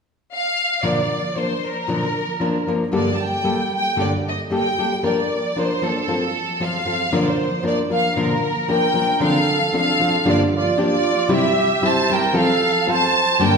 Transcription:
0.33 0.81 F5 medium
0.83 1.00 A#2 medium
0.83 0.99 D3 medium
0.83 1.00 F3 medium
0.83 1.00 A#3 medium
0.83 1.00 D4 medium
0.83 1.00 A#4 medium
0.83 1.36 D5 medium
1.36 1.52 F3 soft
1.36 1.53 A#3 soft
1.36 1.53 D4 medium
1.36 1.53 A#4 medium
1.36 1.64 C5 medium
1.67 2.69 A#4 medium
1.88 2.04 A#2 medium
1.88 2.05 D3 medium
1.88 2.05 F3 medium
1.88 2.05 A#3 medium
1.88 2.05 D4 medium
1.88 2.05 A#4 medium
2.40 2.56 F3 medium
2.40 2.57 A#3 medium
2.40 2.57 D4 medium
2.40 2.57 A#4 medium
2.67 2.83 F3 soft
2.67 2.83 A#3 medium
2.67 2.83 D4 medium
2.67 2.84 A#4 medium
2.92 3.08 G2 medium
2.92 3.08 D3 medium
2.92 3.09 G3 medium
2.92 3.09 A#3 medium
2.92 3.09 G4 medium
2.92 3.09 A4 medium
2.92 3.12 D5 medium
3.14 3.20 A5 medium
3.22 3.73 G5 medium
3.44 3.60 G3 medium
3.44 3.60 A#3 medium
3.44 3.61 G4 medium
3.44 3.61 A4 medium
3.75 3.97 G5 medium
3.96 4.13 G2 medium
3.96 4.13 D3 medium
3.96 4.13 G3 medium
3.96 4.13 A#3 medium
3.96 4.13 G4 medium
3.96 4.13 A4 medium
4.00 4.11 D5 medium
4.28 4.39 D#5 medium
4.50 4.66 G3 medium
4.50 4.67 A#3 medium
4.50 4.67 G4 medium
4.50 4.67 A4 medium
4.55 5.02 G5 medium
4.78 4.93 G3 soft
4.78 4.93 A#3 soft
4.78 4.93 G4 soft
4.78 4.94 A4 soft
5.03 5.19 F3 medium
5.03 5.19 A#3 medium
5.03 5.19 D4 medium
5.03 5.19 A#4 medium
5.03 5.57 D5 medium
5.56 5.72 F3 soft
5.56 5.72 A#3 medium
5.56 5.72 D4 medium
5.56 5.73 A#4 medium
5.56 5.84 C5 medium
5.82 5.97 F3 soft
5.82 5.98 A#3 soft
5.82 5.98 D4 soft
5.82 6.61 A4 medium
5.82 5.98 A#4 soft
6.08 6.24 F3 medium
6.08 6.24 C4 medium
6.08 6.24 F4 medium
6.08 6.25 A4 medium
6.60 6.76 F3 medium
6.60 6.76 C4 medium
6.60 6.76 F4 medium
6.60 6.77 A4 medium
6.60 7.13 F5 medium
6.85 7.01 F3 soft
6.85 7.02 C4 soft
6.85 7.02 F4 soft
6.85 7.02 A4 soft
7.12 7.28 A#2 medium
7.12 7.28 D3 medium
7.12 7.28 F3 medium
7.12 7.28 A#3 medium
7.12 7.28 D4 medium
7.12 7.28 A#4 medium
7.12 7.27 D5 medium
7.27 7.65 C5 medium
7.63 7.79 F3 medium
7.63 7.79 A#3 medium
7.63 7.80 D4 medium
7.63 7.80 A#4 medium
7.67 7.78 D5 medium
7.90 8.06 F3 soft
7.90 8.06 A#3 soft
7.90 8.06 D4 soft
7.90 8.06 A#4 medium
7.90 8.16 F5 medium
8.16 8.32 A#2 medium
8.16 8.33 D3 medium
8.16 8.33 F3 medium
8.16 8.33 A#3 medium
8.16 8.33 D4 medium
8.16 8.33 A#4 medium
8.20 8.98 A#4 medium
8.68 8.85 F3 soft
8.68 8.85 A#3 medium
8.68 8.85 D4 medium
8.68 9.26 A#4 medium
8.68 8.86 A#4 medium
8.68 9.19 G5 medium
8.94 9.10 F3 soft
8.94 9.11 A#3 soft
8.94 9.11 D4 medium
8.94 9.11 A#4 soft
9.20 9.37 D3 medium
9.20 9.37 F3 medium
9.20 9.38 C4 medium
9.20 9.38 D4 medium
9.20 9.38 A4 medium
9.20 9.76 A4 medium
9.24 9.75 F5 medium
9.73 9.90 F3 medium
9.73 9.90 C4 medium
9.73 9.91 D4 medium
9.73 9.91 A4 medium
9.73 10.24 F5 medium
9.78 10.25 A4 medium
10.00 10.16 F3 soft
10.00 10.16 C4 medium
10.00 10.16 D4 soft
10.00 10.17 A4 medium
10.25 10.42 G2 medium
10.25 10.42 D3 medium
10.25 10.42 F3 medium
10.25 10.42 A#3 medium
10.25 10.42 D4 medium
10.25 10.43 G4 medium
10.29 10.41 F4 medium
10.29 10.41 D5 medium
10.56 10.79 F4 medium
10.56 10.79 D5 medium
10.77 10.94 F3 medium
10.77 10.94 A#3 medium
10.77 10.94 D4 medium
10.77 10.94 G4 medium
10.84 11.35 F4 medium
10.84 11.30 D5 medium
11.29 11.46 C3 medium
11.29 11.46 G3 medium
11.29 11.46 C4 medium
11.29 11.46 E4 medium
11.29 11.46 G4 medium
11.34 11.88 G4 medium
11.34 11.85 E5 medium
11.82 11.98 G3 medium
11.82 11.99 C4 medium
11.82 11.99 E4 medium
11.82 11.99 G4 medium
11.82 12.11 A5 medium
11.86 12.15 C5 medium
12.09 12.25 G3 medium
12.09 12.25 C4 soft
12.09 12.26 E4 soft
12.09 12.25 G4 medium
12.09 12.37 A#4 medium
12.09 12.37 G5 medium
12.33 12.50 F3 medium
12.33 12.50 C4 medium
12.33 12.51 F4 medium
12.33 12.51 A4 medium
12.38 12.91 A4 medium
12.38 12.86 F5 medium
12.86 13.03 F3 medium
12.86 13.04 C4 medium
12.86 13.04 F4 medium
12.86 13.04 A4 medium
12.86 13.46 C5 medium
12.92 13.43 A5 loud
13.39 13.57 G2 medium
13.39 13.57 D3 medium
13.39 13.57 G3 medium
13.39 13.57 A#3 medium
13.39 13.57 D4 medium
13.39 13.57 G4 medium
13.43 13.57 A#4 medium
13.43 13.57 G5 medium

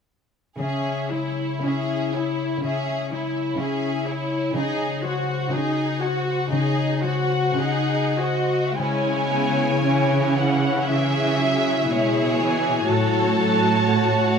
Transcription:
0.58 1.49 C#3 soft
0.58 2.62 C#3 soft
0.58 1.08 C#4 soft
0.58 1.07 G#4 soft
0.58 1.08 E5 soft
1.11 3.10 G#3 soft
1.11 1.63 E4 soft
1.11 1.64 E4 soft
1.11 1.63 C#5 soft
1.63 2.49 C#3 soft
1.63 2.14 C#4 soft
1.63 3.57 E4 soft
1.63 2.14 G#4 soft
1.63 2.15 E5 soft
2.13 2.63 E4 soft
2.13 2.64 E4 soft
2.13 4.05 G#4 soft
2.13 2.63 C#5 soft
2.62 3.45 C#3 soft
2.62 4.54 C#3 soft
2.62 3.08 C#4 soft
2.62 3.08 G#4 soft
2.62 3.08 E5 soft
3.11 5.03 G#3 soft
3.11 3.58 E4 soft
3.11 3.59 E4 soft
3.11 3.59 C#5 soft
3.58 4.42 C#3 soft
3.58 4.07 C#4 soft
3.58 4.60 E4 soft
3.58 4.07 G#4 soft
3.58 4.07 E5 soft
4.05 4.55 E4 soft
4.05 4.57 E4 soft
4.05 5.99 G#4 soft
4.05 4.56 C#5 soft
4.55 5.38 C#3 soft
4.55 6.50 C#3 soft
4.55 5.01 D#4 soft
4.55 5.01 G#4 soft
4.55 5.01 D#5 soft
5.03 7.02 G#3 soft
5.03 5.52 F#4 soft
5.03 5.53 F#4 soft
5.03 5.52 C5 soft
5.51 6.37 C#3 soft
5.51 6.01 D#4 soft
5.51 7.56 F#4 soft
5.51 6.00 G#4 soft
5.51 6.00 D#5 soft
6.00 6.51 F#4 soft
6.00 8.17 G#4 soft
6.00 6.51 C5 soft
6.50 7.42 C#3 soft
6.50 8.77 C#3 soft
6.50 6.99 D#4 soft
6.50 6.99 G#4 soft
6.50 6.99 D#5 soft
7.01 10.88 G#3 soft
7.01 7.57 F#4 soft
7.01 7.56 C5 soft
7.01 8.13 F#5 soft
7.57 8.63 C#3 soft
7.57 8.18 D#4 soft
7.57 8.83 F#4 soft
7.57 8.18 G#4 soft
7.57 8.17 D#5 soft
8.17 8.78 F#4 soft
8.17 8.79 F#4 soft
8.17 10.19 G#4 soft
8.17 8.79 C5 soft
8.17 8.79 D#5 soft
8.77 11.86 C#3 soft
8.77 12.69 C#3 soft
8.77 9.80 G#3 soft
8.77 9.28 C#4 soft
8.77 9.81 E4 soft
8.77 10.86 C#5 soft
8.77 10.36 G#5 soft
9.15 11.23 C#4 soft
9.32 9.83 B3 soft
9.50 10.54 E4 soft
9.84 10.86 E3 soft
9.84 10.35 C#4 soft
9.84 10.87 E4 soft
9.84 11.90 C#5 soft
10.20 12.23 G#4 soft
10.36 11.87 C#4 soft
10.36 10.89 F#5 soft
10.55 11.55 E4 soft
10.88 11.39 E3 soft
10.88 12.93 G#3 soft
10.88 11.90 G#4 soft
10.88 12.40 E5 soft
10.88 11.91 E5 soft
11.24 13.20 C#4 soft
11.40 11.91 F#3 soft
11.57 12.55 E4 soft
11.89 12.88 B2 soft
11.89 12.40 G#3 soft
11.89 12.88 E4 soft
11.89 12.87 G#4 soft
11.89 13.86 C#5 soft
11.89 12.88 C#5 soft
12.25 12.93 G#4 soft
12.40 12.89 E3 soft
12.40 12.88 G#5 soft
12.57 12.93 E4 soft
12.88 14.39 A2 soft
12.88 13.36 F#3 soft
12.88 14.39 F#4 soft
12.88 13.87 A4 soft
12.88 14.39 C#5 soft
12.88 14.37 A5 soft
13.21 14.39 C#4 soft
13.37 13.86 F#3 soft
13.55 14.20 F#4 soft
13.87 14.37 A3 soft
13.87 14.39 F#4 soft
13.87 14.39 C#5 soft
14.21 14.39 F#4 soft

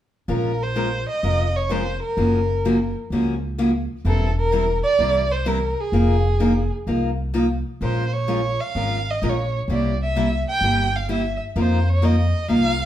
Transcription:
0.28 1.04 A#1 medium
0.28 0.50 F3 medium
0.28 0.51 G#3 medium
0.28 0.51 C#4 medium
0.28 0.51 F4 medium
0.28 0.51 A#4 medium
0.33 0.64 A#4 medium
0.63 1.08 C5 medium
0.75 0.87 F3 medium
0.75 0.88 G#3 medium
0.75 0.87 C#4 medium
0.75 0.88 F4 medium
0.75 0.88 A#4 medium
1.09 1.58 D#5 medium
1.23 1.98 F1 medium
1.23 1.45 F3 medium
1.23 1.45 G#3 soft
1.23 1.45 C#4 medium
1.23 1.45 F4 medium
1.23 1.45 A#4 medium
1.56 1.73 C#5 medium
1.69 1.81 F3 medium
1.69 1.82 G#3 medium
1.69 1.82 C#4 medium
1.69 1.82 F4 medium
1.69 1.82 A#4 medium
1.69 2.01 C5 medium
2.03 2.92 A#4 medium
2.17 2.92 F#1 medium
2.17 2.39 C#3 soft
2.17 2.39 F3 medium
2.17 2.39 A#3 medium
2.17 2.39 C#4 medium
2.17 2.39 F#4 medium
2.65 2.76 C#3 medium
2.65 2.76 F3 medium
2.65 2.76 A#3 medium
2.65 2.76 C#4 medium
2.65 2.76 F#4 medium
3.10 3.86 C#2 medium
3.10 3.34 C#3 medium
3.10 3.34 F3 medium
3.10 3.34 A#3 medium
3.10 3.34 C#4 medium
3.10 3.34 F#4 medium
3.58 3.70 C#3 medium
3.58 3.70 F3 medium
3.58 3.70 A#3 medium
3.58 3.70 C#4 medium
3.58 3.70 F#4 medium
4.05 4.80 E1 medium
4.05 4.27 E3 medium
4.05 4.27 G3 medium
4.05 4.28 C4 medium
4.05 4.27 E4 medium
4.05 4.35 A4 medium
4.05 4.27 A#4 medium
4.38 4.81 A#4 medium
4.52 4.64 E3 medium
4.52 4.64 G3 medium
4.52 4.64 C4 medium
4.52 4.64 E4 medium
4.52 4.64 A#4 medium
4.83 5.33 D5 medium
4.99 5.74 C2 medium
4.99 5.21 E3 medium
4.99 5.21 G3 medium
4.99 5.21 C4 medium
4.99 5.21 E4 medium
4.99 5.22 A#4 medium
5.31 5.49 C5 medium
5.46 5.58 E3 medium
5.46 5.58 G3 medium
5.46 5.58 C4 medium
5.46 5.58 E4 medium
5.46 5.58 A#4 medium
5.46 5.82 A#4 medium
5.81 6.72 G#4 medium
5.92 6.68 F1 medium
5.92 6.15 F3 medium
5.92 6.15 A#3 medium
5.92 6.15 D#4 medium
5.92 6.15 F4 medium
5.92 6.15 A#4 medium
6.40 6.52 F3 medium
6.40 6.52 A#3 medium
6.40 6.52 D#4 medium
6.40 6.52 F4 medium
6.40 6.52 A#4 medium
6.87 7.62 C2 medium
6.87 7.09 F3 soft
6.87 7.09 A#3 medium
6.87 7.09 D#4 medium
6.87 7.09 F4 medium
6.87 7.09 A#4 medium
7.34 7.45 F3 medium
7.34 7.45 A#3 medium
7.34 7.46 D#4 medium
7.34 7.46 F4 medium
7.34 7.46 A#4 medium
7.81 8.56 A#1 medium
7.81 8.03 F3 medium
7.81 8.03 G#3 medium
7.81 8.03 C#4 medium
7.81 8.03 F4 medium
7.81 8.03 A#4 medium
7.81 8.15 C5 medium
8.13 8.62 C#5 medium
8.28 8.39 F3 medium
8.28 8.40 G#3 medium
8.28 8.40 C#4 medium
8.28 8.40 F4 medium
8.28 8.40 A#4 medium
8.60 9.12 F5 medium
8.75 9.15 G#1 medium
8.75 8.97 F3 medium
8.75 8.97 G#3 medium
8.75 8.97 C#4 soft
8.75 8.98 F4 medium
8.75 8.98 A#4 medium
9.10 9.30 D#5 medium
9.22 9.62 A#1 medium
9.22 9.34 F3 medium
9.22 9.34 G#3 medium
9.22 9.34 C#4 medium
9.22 9.34 F4 medium
9.22 9.34 A#4 medium
9.29 9.56 C#5 medium
9.68 10.43 C2 medium
9.68 9.91 C3 medium
9.68 9.91 G3 medium
9.68 9.91 A#3 medium
9.68 9.91 E4 medium
9.68 9.92 G4 medium
9.72 9.99 D5 medium
10.02 10.44 E5 medium
10.16 10.27 C3 medium
10.16 10.28 G3 medium
10.16 10.28 A#3 medium
10.16 10.28 E4 medium
10.16 10.28 G4 medium
10.49 10.97 G5 medium
10.61 11.37 G1 medium
10.61 10.85 C3 medium
10.61 10.85 G3 medium
10.61 10.85 A#3 medium
10.61 10.85 E4 medium
10.61 10.85 G4 medium
10.96 11.11 F5 medium
11.09 11.21 C3 medium
11.09 11.21 G3 medium
11.09 11.21 A#3 medium
11.09 11.21 E4 medium
11.09 11.21 G4 medium
11.09 11.39 E5 medium
11.56 12.31 F2 medium
11.56 11.78 F3 medium
11.56 11.78 A#3 medium
11.56 11.78 D#4 medium
11.56 11.78 F4 medium
11.56 11.78 A#4 medium
11.60 11.91 C5 medium
11.89 12.06 C#5 medium
12.02 12.14 F3 medium
12.02 12.14 A#3 medium
12.02 12.15 D#4 medium
12.02 12.15 F4 medium
12.02 12.15 A#4 medium
12.02 12.50 D#5 medium
12.48 12.85 C2 medium
12.48 12.71 F3 medium
12.48 12.71 A#3 medium
12.48 12.71 D#4 medium
12.48 12.72 F4 medium
12.48 12.72 A#4 medium
12.48 12.85 F5 loud

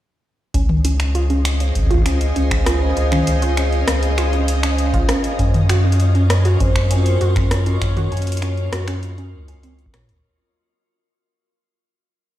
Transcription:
0.54 1.72 C#2 loud
0.54 5.05 C#4 medium
0.54 0.69 C#4 medium
0.54 10.25 C#4 medium
0.54 5.05 G#4 medium
0.54 5.05 C5 medium
0.54 5.05 D#5 medium
0.54 10.25 D#5 medium
0.54 5.05 F5 medium
0.54 kick medium
0.54 closed hi-hat medium
0.69 high tom medium
0.85 0.91 C#4 medium
0.85 closed hi-hat medium
1.00 finger snap medium
1.00 closed hi-hat medium
1.15 1.26 F4 loud
1.15 closed hi-hat medium
1.30 1.44 C#4 medium
1.30 closed hi-hat soft
1.45 finger snap medium
1.45 closed hi-hat medium
1.60 1.67 C#4 medium
1.60 closed hi-hat medium
1.75 2.32 C#2 medium
1.75 kick medium
1.75 closed hi-hat soft
1.79 kick medium
1.83 kick medium
1.87 2.02 F4 loud
1.87 kick medium
1.87 closed hi-hat soft
1.91 kick medium
1.94 kick medium
1.98 kick medium
2.02 2.20 C#4 medium
2.02 finger snap medium
2.02 kick loud
2.02 closed hi-hat medium
2.21 closed hi-hat medium
2.36 2.93 C#2 medium
2.36 2.43 C#4 medium
2.36 closed hi-hat medium
2.51 finger snap medium
2.51 kick loud
2.51 closed hi-hat soft
2.66 2.78 F4 loud
2.66 cross-stick loud
2.66 closed hi-hat medium
2.82 2.96 C#4 medium
2.97 3.22 C#2 medium
2.97 closed hi-hat medium
3.12 3.19 C#4 medium
3.12 finger snap soft
3.12 closed hi-hat soft
3.12 high tom medium
3.16 high tom medium
3.19 high tom medium
3.23 3.84 C#2 medium
3.23 closed hi-hat medium
3.23 high tom soft
3.27 high tom soft
3.42 3.54 F4 loud
3.42 closed hi-hat medium
3.57 3.72 C#4 medium
3.57 finger snap medium
3.57 closed hi-hat medium
3.73 closed hi-hat soft
3.88 5.05 C#2 medium
3.88 3.94 C#4 medium
3.88 cross-stick loud
3.88 closed hi-hat loud
4.03 closed hi-hat medium
4.18 4.29 F4 loud
4.18 finger snap medium
4.18 closed hi-hat medium
4.33 4.48 C#4 medium
4.33 closed hi-hat soft
4.48 closed hi-hat medium
4.63 4.70 C#4 medium
4.63 finger snap medium
4.63 closed hi-hat medium
4.78 closed hi-hat medium
4.94 5.05 F4 loud
4.94 kick loud
4.94 closed hi-hat soft
5.09 5.23 C#4 medium
5.09 10.20 F4 medium
5.09 10.20 F#4 medium
5.09 10.20 A#4 medium
5.09 cross-stick loud
5.09 closed hi-hat medium
5.24 closed hi-hat medium
5.39 6.56 F#2 loud
5.39 5.46 C#4 medium
5.39 kick medium
5.39 closed hi-hat soft
5.54 closed hi-hat soft
5.54 high tom medium
5.69 5.81 F#4 loud
5.69 finger snap medium
5.69 closed hi-hat medium
5.85 5.99 C#4 medium
5.92 closed hi-hat medium
6.00 closed hi-hat medium
6.15 6.22 C#4 medium
6.15 closed hi-hat soft
6.30 6.62 C#5 loud
6.30 finger snap medium
6.30 cross-stick loud
6.30 closed hi-hat medium
6.45 6.57 F#4 loud
6.45 closed hi-hat medium
6.60 7.17 F#2 medium
6.60 6.75 C#4 medium
6.60 7.53 C5 loud
6.60 kick loud
6.60 closed hi-hat medium
6.76 finger snap medium
6.76 closed hi-hat soft
6.91 6.98 C#4 medium
6.91 closed hi-hat medium
7.06 closed hi-hat medium
7.21 7.78 F#2 medium
7.21 7.32 F#4 loud
7.21 closed hi-hat medium
7.36 7.51 C#4 medium
7.36 finger snap soft
7.36 kick loud
7.36 closed hi-hat soft
7.51 9.64 C#5 loud
7.51 cross-stick loud
7.51 closed hi-hat medium
7.66 7.73 C#4 medium
7.66 closed hi-hat medium
7.82 8.07 F#2 loud
7.82 finger snap medium
7.82 kick medium
7.82 closed hi-hat soft
7.97 8.08 F#4 loud
7.97 closed hi-hat soft
7.97 high tom medium
8.12 8.69 F#2 medium
8.12 8.26 C#4 medium
8.12 closed hi-hat soft
8.17 closed hi-hat soft
8.22 closed hi-hat medium
8.27 closed hi-hat medium
8.32 closed hi-hat medium
8.37 closed hi-hat medium
8.42 8.49 C#4 medium
8.42 finger snap soft
8.42 closed hi-hat medium
8.57 closed hi-hat soft
8.73 9.35 F#2 medium
8.73 8.84 F#4 loud
8.73 cross-stick loud
8.73 closed hi-hat medium
8.88 9.02 C#4 medium
8.88 finger snap medium
8.88 closed hi-hat soft
9.03 closed hi-hat soft
9.18 9.25 C#4 medium
9.18 closed hi-hat soft
9.33 9.90 C#2 loud
9.48 9.63 C#4 medium
9.48 closed hi-hat soft
9.63 9.75 C4 medium
9.63 closed hi-hat medium
9.79 closed hi-hat soft
9.86 kick loud
9.94 10.10 A#2 loud
9.94 10.01 C#5 loud
9.94 finger snap medium
9.94 cross-stick loud
9.94 closed hi-hat medium
10.09 10.22 C#2 medium
10.09 closed hi-hat medium

